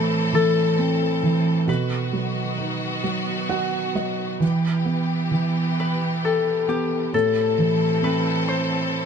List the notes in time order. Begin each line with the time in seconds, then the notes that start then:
Already playing: A2 E3 A3 C4 A4
0.33 E3 A4
0.79 C4
1.23 E3
1.68 B2 D#3 B3 F#4 B4
2.13 F#3
2.58 D#4
3.04 F#3
3.49 F#4 F#5
3.95 F#3 D#5
4.40 E3 B3 G4
4.85 B3
5.31 E3
5.80 B4
6.25 A4
6.68 B3 G4
7.13 A2 E3 C4 A4
7.58 E3
8.03 C4 B4
8.48 C5